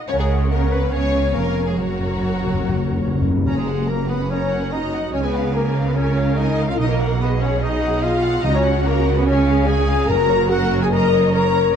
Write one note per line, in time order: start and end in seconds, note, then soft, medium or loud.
0.07 0.89 C#2 medium
0.07 0.88 C#3 medium
0.07 0.18 C#4 loud
0.07 0.48 A#4 medium
0.07 0.13 C#5 medium
0.07 0.19 C#5 loud
0.07 0.48 C#5 medium
0.07 0.48 F#5 medium
0.19 0.50 G#3 medium
0.19 0.27 G#4 medium
0.19 0.51 G#4 medium
0.19 0.28 G#4 medium
0.50 0.71 A#3 medium
0.50 0.71 A#4 medium
0.50 0.92 A#4 medium
0.50 0.71 A#4 medium
0.50 0.75 A#4 medium
0.50 0.91 C#5 medium
0.50 0.92 F#5 medium
0.71 0.92 B3 medium
0.71 0.81 B4 medium
0.71 0.92 B4 medium
0.71 0.95 B4 medium
0.92 1.34 C#2 medium
0.92 1.34 C#3 medium
0.92 1.77 B3 medium
0.92 1.35 C#4 loud
0.92 1.33 C#5 medium
0.92 1.76 C#5 medium
0.92 1.34 C#5 loud
0.92 1.35 C#5 medium
0.92 1.77 F5 medium
0.92 1.77 G#5 medium
1.34 1.77 F1 medium
1.34 1.77 F2 medium
1.34 1.66 A#3 loud
1.34 1.68 A#4 medium
1.34 1.66 A#4 medium
1.34 1.70 A#4 medium
1.66 1.78 G#3 medium
1.66 1.77 G#4 medium
1.66 1.80 G#4 medium
1.66 1.81 G#4 medium
1.77 3.27 F#1 medium
1.77 3.26 F#2 medium
1.77 1.84 F#2 soft
1.77 3.23 F#3 medium
1.77 3.26 F#4 medium
1.77 3.27 F#4 medium
1.77 3.24 A#4 medium
1.77 3.24 C#5 medium
1.77 3.27 F#5 medium
1.77 3.24 A#5 medium
1.86 1.92 F#2 soft
1.93 1.99 F#2 soft
2.00 2.07 F#2 soft
2.08 2.14 F#2 soft
2.16 2.22 F#2 soft
2.23 2.30 F#2 soft
2.31 2.38 F#2 soft
2.39 2.45 F#2 soft
2.47 2.53 F#2 medium
2.54 2.60 F#2 medium
2.61 2.67 F#2 medium
2.68 2.75 F#2 medium
2.76 2.83 F#2 medium
2.84 2.90 F#2 medium
2.91 2.98 F#2 medium
2.99 3.06 F#2 medium
3.07 3.13 F#2 medium
3.14 3.21 F#2 medium
3.22 3.28 F#2 medium
3.30 3.36 F#2 medium
3.37 3.44 F#2 medium
3.46 5.09 F#1 medium
3.46 4.05 F#2 medium
3.46 5.09 F#2 medium
3.46 3.56 C#4 medium
3.46 3.57 C#4 medium
3.46 3.57 C#5 medium
3.46 3.59 C#5 medium
3.46 3.66 A#5 medium
3.56 3.88 G#3 medium
3.56 3.88 G#4 medium
3.56 3.90 G#4 medium
3.67 3.89 F#5 medium
3.88 4.08 A#3 medium
3.88 4.10 A#3 medium
3.88 4.09 A#4 medium
3.88 4.11 A#4 medium
3.88 4.09 A#5 medium
4.08 4.29 B3 medium
4.08 4.19 B3 medium
4.08 4.30 B4 medium
4.08 4.32 B4 medium
4.08 4.30 F#5 medium
4.30 4.71 C#4 medium
4.30 4.72 C#4 loud
4.30 4.69 A#4 medium
4.30 4.72 C#5 medium
4.30 4.73 C#5 medium
4.30 4.49 A#5 medium
4.51 4.72 F#5 medium
4.71 5.13 D#4 medium
4.71 5.13 F#4 medium
4.71 5.14 D#5 medium
4.71 5.12 D#5 medium
4.71 4.92 A#5 medium
4.93 5.14 F#5 medium
5.13 6.76 C#2 medium
5.13 6.76 C#3 medium
5.13 5.24 C#4 loud
5.13 5.26 C#4 medium
5.13 5.55 G#4 medium
5.13 5.25 C#5 medium
5.13 5.23 C#5 medium
5.13 5.33 G#5 medium
5.23 5.55 B3 medium
5.23 5.53 B4 medium
5.23 5.54 B4 medium
5.34 5.55 F5 medium
5.54 5.68 A#3 medium
5.54 5.86 A#3 medium
5.54 5.61 A#4 medium
5.54 5.86 A#4 medium
5.54 7.17 A#4 medium
5.54 5.76 G#5 medium
5.76 5.96 F5 medium
5.85 5.96 B3 medium
5.85 5.91 B3 medium
5.85 5.97 B4 medium
5.85 5.96 B4 medium
5.94 6.36 C#4 loud
5.94 6.37 C#4 medium
5.94 6.38 C#5 medium
5.94 6.16 G#5 medium
6.17 6.38 F5 medium
6.35 6.67 D#4 loud
6.35 6.71 D#4 medium
6.35 6.71 D#5 medium
6.35 6.68 D#5 medium
6.35 6.59 G#5 medium
6.59 6.79 F5 medium
6.69 6.79 F4 loud
6.69 6.79 F4 medium
6.69 6.79 F5 medium
6.77 8.41 B1 medium
6.77 8.41 B2 medium
6.77 6.89 D#4 loud
6.77 6.89 D#4 medium
6.77 6.98 D#5 medium
6.77 6.89 D#5 loud
6.77 6.90 D#5 loud
6.87 7.02 A#3 loud
6.87 7.21 A#3 medium
6.87 7.20 A#4 medium
7.01 7.21 F#5 medium
7.19 7.40 B3 medium
7.19 7.30 B3 medium
7.19 8.42 G#4 medium
7.19 7.28 B4 medium
7.19 7.42 B4 medium
7.19 7.42 D#5 medium
7.40 7.50 C#4 medium
7.40 7.62 C#4 loud
7.40 7.61 C#5 medium
7.40 7.63 C#5 medium
7.40 7.62 F#5 medium
7.61 8.02 D#4 loud
7.61 8.04 D#4 loud
7.61 8.03 D#5 medium
7.61 7.81 D#5 medium
7.61 8.03 D#5 loud
7.82 8.03 F#5 medium
8.02 8.44 F4 loud
8.02 8.23 D#5 medium
8.02 8.44 F5 loud
8.02 8.43 F5 loud
8.23 8.44 F#5 medium
8.44 10.06 C#2 medium
8.44 10.06 C#3 medium
8.44 9.03 C#3 loud
8.44 8.54 D#4 loud
8.44 8.49 D#4 loud
8.44 9.25 F#4 medium
8.44 8.56 D#5 loud
8.44 8.55 D#5 loud
8.44 8.63 A#5 medium
8.54 8.68 C#4 medium
8.54 8.86 C#4 loud
8.54 8.86 C#5 loud
8.54 8.85 C#5 loud
8.65 8.86 F#5 medium
8.85 9.16 A#3 loud
8.85 8.99 A#3 medium
8.85 9.16 A#4 loud
8.85 8.92 A#4 loud
8.85 9.07 A#5 medium
9.06 9.27 F#5 medium
9.16 9.27 B3 medium
9.16 9.26 B4 medium
9.16 9.27 B4 medium
9.26 9.67 C#4 loud
9.26 10.10 G#4 loud
9.26 9.66 C#5 loud
9.26 9.68 C#5 loud
9.26 9.46 G#5 medium
9.47 9.68 F5 medium
9.66 10.09 G#4 loud
9.66 10.08 G#5 loud
9.66 9.89 G#5 medium
9.66 10.09 G#5 loud
9.89 10.10 F5 medium
10.08 11.75 F#1 loud
10.08 11.75 F#2 loud
10.08 10.68 F#2 loud
10.08 10.50 F#4 loud
10.08 10.50 A#4 loud
10.08 10.29 A#4 medium
10.08 10.50 A#4 loud
10.08 10.51 A#5 loud
10.30 10.51 C#5 medium
10.49 10.81 F#4 loud
10.49 10.82 F#4 loud
10.49 10.71 A#4 medium
10.49 10.93 A#4 loud
10.49 10.82 F#5 loud
10.49 10.58 F#5 loud
10.72 10.93 C#5 medium
10.82 10.92 G#4 loud
10.82 10.88 G#4 medium
10.82 10.87 G#5 loud
10.82 10.94 G#5 loud
10.91 11.32 A#4 loud
10.91 11.11 A#4 medium
10.91 11.33 A#4 loud
10.91 11.33 D#5 loud
10.91 11.33 A#5 loud
10.91 11.34 A#5 loud
11.13 11.34 C#5 medium
11.33 11.74 A#4 loud
11.33 11.55 A#4 medium
11.33 11.75 A#4 loud
11.33 11.75 C#5 medium
11.33 11.75 A#5 loud
11.33 11.76 A#5 loud
11.54 11.75 C#5 medium